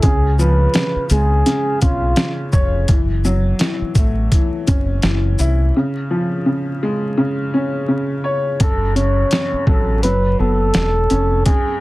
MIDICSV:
0, 0, Header, 1, 6, 480
1, 0, Start_track
1, 0, Key_signature, 3, "minor"
1, 0, Tempo, 714286
1, 20, Time_signature, 4, 2, 24, 8
1, 7932, End_track
2, 0, Start_track
2, 0, Title_t, "Muted trumpet"
2, 0, Program_c, 0, 59
2, 11, Note_on_c, 0, 68, 100
2, 231, Note_off_c, 0, 68, 0
2, 272, Note_on_c, 0, 71, 82
2, 719, Note_off_c, 0, 71, 0
2, 754, Note_on_c, 0, 68, 83
2, 1201, Note_off_c, 0, 68, 0
2, 1222, Note_on_c, 0, 65, 82
2, 1578, Note_off_c, 0, 65, 0
2, 5797, Note_on_c, 0, 69, 103
2, 6006, Note_off_c, 0, 69, 0
2, 6022, Note_on_c, 0, 73, 81
2, 6474, Note_off_c, 0, 73, 0
2, 6505, Note_on_c, 0, 69, 78
2, 6719, Note_off_c, 0, 69, 0
2, 6737, Note_on_c, 0, 71, 97
2, 6955, Note_off_c, 0, 71, 0
2, 6986, Note_on_c, 0, 69, 96
2, 7677, Note_off_c, 0, 69, 0
2, 7699, Note_on_c, 0, 68, 103
2, 7916, Note_off_c, 0, 68, 0
2, 7932, End_track
3, 0, Start_track
3, 0, Title_t, "Upright piano"
3, 0, Program_c, 1, 0
3, 0, Control_c, 1, 64, 127
3, 28, Control_c, 1, 64, 0
3, 32, Note_on_c, 1, 49, 91
3, 160, Control_c, 1, 64, 127
3, 261, Note_on_c, 1, 53, 84
3, 489, Note_off_c, 1, 49, 0
3, 499, Note_on_c, 1, 49, 81
3, 748, Note_on_c, 1, 56, 84
3, 971, Note_off_c, 1, 49, 0
3, 981, Note_on_c, 1, 49, 96
3, 1226, Note_on_c, 1, 61, 84
3, 1445, Note_off_c, 1, 49, 0
3, 1455, Note_on_c, 1, 49, 84
3, 1461, Note_off_c, 1, 53, 0
3, 1697, Note_on_c, 1, 73, 79
3, 1938, Note_off_c, 1, 49, 0
3, 1939, Note_off_c, 1, 73, 0
3, 1939, Note_on_c, 1, 52, 95
3, 1943, Note_off_c, 1, 61, 0
3, 1944, Note_off_c, 1, 56, 0
3, 1950, Control_c, 1, 64, 0
3, 2058, Control_c, 1, 64, 127
3, 2182, Note_on_c, 1, 54, 84
3, 2403, Note_off_c, 1, 52, 0
3, 2413, Note_on_c, 1, 52, 88
3, 2673, Note_on_c, 1, 57, 75
3, 2905, Note_off_c, 1, 52, 0
3, 2915, Note_on_c, 1, 52, 86
3, 3140, Note_on_c, 1, 61, 86
3, 3373, Note_off_c, 1, 52, 0
3, 3381, Note_off_c, 1, 54, 0
3, 3383, Note_on_c, 1, 52, 90
3, 3625, Note_on_c, 1, 64, 89
3, 3860, Note_off_c, 1, 61, 0
3, 3862, Note_off_c, 1, 52, 0
3, 3863, Note_off_c, 1, 64, 0
3, 3867, Note_off_c, 1, 57, 0
3, 3868, Control_c, 1, 64, 0
3, 3874, Note_on_c, 1, 49, 91
3, 3985, Control_c, 1, 64, 127
3, 4103, Note_on_c, 1, 53, 81
3, 4330, Note_off_c, 1, 49, 0
3, 4340, Note_on_c, 1, 49, 80
3, 4588, Note_on_c, 1, 56, 87
3, 4812, Note_off_c, 1, 49, 0
3, 4822, Note_on_c, 1, 49, 96
3, 5066, Note_on_c, 1, 61, 84
3, 5286, Note_off_c, 1, 49, 0
3, 5297, Note_on_c, 1, 49, 85
3, 5301, Note_off_c, 1, 53, 0
3, 5537, Note_on_c, 1, 73, 78
3, 5779, Note_off_c, 1, 49, 0
3, 5779, Note_off_c, 1, 73, 0
3, 5783, Note_off_c, 1, 61, 0
3, 5784, Note_off_c, 1, 56, 0
3, 5784, Note_on_c, 1, 42, 89
3, 5789, Control_c, 1, 64, 0
3, 5918, Control_c, 1, 64, 127
3, 6016, Note_on_c, 1, 49, 77
3, 6257, Note_off_c, 1, 42, 0
3, 6267, Note_on_c, 1, 42, 78
3, 6509, Note_on_c, 1, 54, 75
3, 6738, Note_off_c, 1, 49, 0
3, 6740, Note_off_c, 1, 54, 0
3, 6744, Note_off_c, 1, 42, 0
3, 6748, Control_c, 1, 64, 0
3, 6750, Note_on_c, 1, 54, 94
3, 6862, Control_c, 1, 64, 127
3, 6982, Note_on_c, 1, 59, 79
3, 7462, Note_on_c, 1, 61, 87
3, 7701, Note_off_c, 1, 59, 0
3, 7701, Note_off_c, 1, 61, 0
3, 7705, Note_off_c, 1, 54, 0
3, 7710, Control_c, 1, 64, 0
3, 7711, Note_on_c, 1, 42, 96
3, 7817, Control_c, 1, 64, 127
3, 7932, Note_off_c, 1, 42, 0
3, 7932, End_track
4, 0, Start_track
4, 0, Title_t, "Fingered electric bass"
4, 0, Program_c, 2, 33
4, 22, Note_on_c, 2, 37, 112
4, 444, Note_off_c, 2, 37, 0
4, 743, Note_on_c, 2, 37, 91
4, 953, Note_off_c, 2, 37, 0
4, 1227, Note_on_c, 2, 35, 95
4, 1435, Note_off_c, 2, 35, 0
4, 1702, Note_on_c, 2, 29, 94
4, 1913, Note_off_c, 2, 29, 0
4, 1942, Note_on_c, 2, 30, 105
4, 2364, Note_off_c, 2, 30, 0
4, 2659, Note_on_c, 2, 33, 95
4, 2871, Note_off_c, 2, 33, 0
4, 3148, Note_on_c, 2, 30, 90
4, 3356, Note_off_c, 2, 30, 0
4, 3384, Note_on_c, 2, 30, 99
4, 3594, Note_off_c, 2, 30, 0
4, 3624, Note_on_c, 2, 36, 95
4, 3834, Note_off_c, 2, 36, 0
4, 5784, Note_on_c, 2, 30, 109
4, 6205, Note_off_c, 2, 30, 0
4, 6500, Note_on_c, 2, 33, 88
4, 6745, Note_off_c, 2, 33, 0
4, 6745, Note_on_c, 2, 30, 102
4, 6954, Note_off_c, 2, 30, 0
4, 6985, Note_on_c, 2, 30, 85
4, 7194, Note_off_c, 2, 30, 0
4, 7225, Note_on_c, 2, 28, 96
4, 7434, Note_off_c, 2, 28, 0
4, 7465, Note_on_c, 2, 29, 100
4, 7674, Note_off_c, 2, 29, 0
4, 7932, End_track
5, 0, Start_track
5, 0, Title_t, "Muted fingered electric bass strokes"
5, 643, Note_on_c, 9, 29, 50
5, 711, Note_off_c, 9, 29, 0
5, 2563, Note_on_c, 9, 29, 50
5, 2630, Note_off_c, 9, 29, 0
5, 6405, Note_on_c, 9, 29, 49
5, 6472, Note_off_c, 9, 29, 0
5, 7932, End_track
6, 0, Start_track
6, 0, Title_t, "Drums"
6, 17, Note_on_c, 9, 42, 91
6, 21, Note_on_c, 9, 36, 124
6, 84, Note_off_c, 9, 42, 0
6, 88, Note_off_c, 9, 36, 0
6, 262, Note_on_c, 9, 82, 59
6, 330, Note_off_c, 9, 82, 0
6, 495, Note_on_c, 9, 42, 79
6, 507, Note_on_c, 9, 38, 114
6, 562, Note_off_c, 9, 42, 0
6, 574, Note_off_c, 9, 38, 0
6, 737, Note_on_c, 9, 42, 62
6, 737, Note_on_c, 9, 82, 66
6, 804, Note_off_c, 9, 42, 0
6, 804, Note_off_c, 9, 82, 0
6, 982, Note_on_c, 9, 42, 90
6, 986, Note_on_c, 9, 38, 36
6, 1049, Note_off_c, 9, 42, 0
6, 1053, Note_off_c, 9, 38, 0
6, 1220, Note_on_c, 9, 42, 55
6, 1220, Note_on_c, 9, 82, 54
6, 1225, Note_on_c, 9, 36, 99
6, 1287, Note_off_c, 9, 42, 0
6, 1287, Note_off_c, 9, 82, 0
6, 1292, Note_off_c, 9, 36, 0
6, 1453, Note_on_c, 9, 42, 69
6, 1459, Note_on_c, 9, 38, 118
6, 1520, Note_off_c, 9, 42, 0
6, 1527, Note_off_c, 9, 38, 0
6, 1697, Note_on_c, 9, 82, 53
6, 1701, Note_on_c, 9, 36, 95
6, 1765, Note_off_c, 9, 82, 0
6, 1768, Note_off_c, 9, 36, 0
6, 1935, Note_on_c, 9, 42, 93
6, 1940, Note_on_c, 9, 36, 125
6, 2003, Note_off_c, 9, 42, 0
6, 2007, Note_off_c, 9, 36, 0
6, 2181, Note_on_c, 9, 82, 58
6, 2248, Note_off_c, 9, 82, 0
6, 2414, Note_on_c, 9, 42, 78
6, 2426, Note_on_c, 9, 38, 113
6, 2481, Note_off_c, 9, 42, 0
6, 2493, Note_off_c, 9, 38, 0
6, 2656, Note_on_c, 9, 42, 64
6, 2656, Note_on_c, 9, 82, 63
6, 2657, Note_on_c, 9, 36, 105
6, 2724, Note_off_c, 9, 36, 0
6, 2724, Note_off_c, 9, 42, 0
6, 2724, Note_off_c, 9, 82, 0
6, 2901, Note_on_c, 9, 36, 90
6, 2901, Note_on_c, 9, 42, 91
6, 2968, Note_off_c, 9, 42, 0
6, 2969, Note_off_c, 9, 36, 0
6, 3141, Note_on_c, 9, 42, 55
6, 3141, Note_on_c, 9, 82, 55
6, 3145, Note_on_c, 9, 36, 102
6, 3208, Note_off_c, 9, 42, 0
6, 3208, Note_off_c, 9, 82, 0
6, 3213, Note_off_c, 9, 36, 0
6, 3376, Note_on_c, 9, 42, 68
6, 3382, Note_on_c, 9, 38, 120
6, 3443, Note_off_c, 9, 42, 0
6, 3450, Note_off_c, 9, 38, 0
6, 3620, Note_on_c, 9, 82, 53
6, 3687, Note_off_c, 9, 82, 0
6, 5779, Note_on_c, 9, 42, 91
6, 5782, Note_on_c, 9, 36, 124
6, 5846, Note_off_c, 9, 42, 0
6, 5849, Note_off_c, 9, 36, 0
6, 6023, Note_on_c, 9, 42, 56
6, 6090, Note_off_c, 9, 42, 0
6, 6256, Note_on_c, 9, 42, 75
6, 6268, Note_on_c, 9, 38, 110
6, 6323, Note_off_c, 9, 42, 0
6, 6335, Note_off_c, 9, 38, 0
6, 6498, Note_on_c, 9, 36, 104
6, 6565, Note_off_c, 9, 36, 0
6, 6741, Note_on_c, 9, 42, 86
6, 6808, Note_off_c, 9, 42, 0
6, 7215, Note_on_c, 9, 42, 67
6, 7222, Note_on_c, 9, 38, 112
6, 7283, Note_off_c, 9, 42, 0
6, 7289, Note_off_c, 9, 38, 0
6, 7459, Note_on_c, 9, 42, 52
6, 7527, Note_off_c, 9, 42, 0
6, 7698, Note_on_c, 9, 42, 93
6, 7702, Note_on_c, 9, 36, 120
6, 7765, Note_off_c, 9, 42, 0
6, 7769, Note_off_c, 9, 36, 0
6, 7932, End_track
0, 0, End_of_file